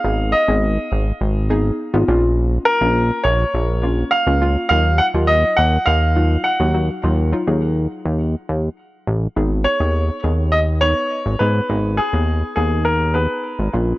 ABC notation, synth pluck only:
X:1
M:4/4
L:1/16
Q:1/4=103
K:G#dor
V:1 name="Synth pluck"
[B,DG]2 z [B,DG]4 z3 [B,DG]2 z [B,DE] [A,CE]2- | [A,CE]2 z [A,CE]4 z3 [A,CE]2 z [A,CE] [A,CE] z | [F,DE]2 z [F,DE]4 z3 [F,DE]2 z [F,DF] [F,DF] z | [F,DE] z [F,DE] [F,DG]4- [F,DG] z8 |
[B,DG]2 z [B,DG]2 z [B,DG]2 z2 [B,DB]2 z2 [B,DG] z | [B,DG]2 z [B,DG]2 z [B,DG]2 z2 [B,DG]2 z2 [A,CE]2 |]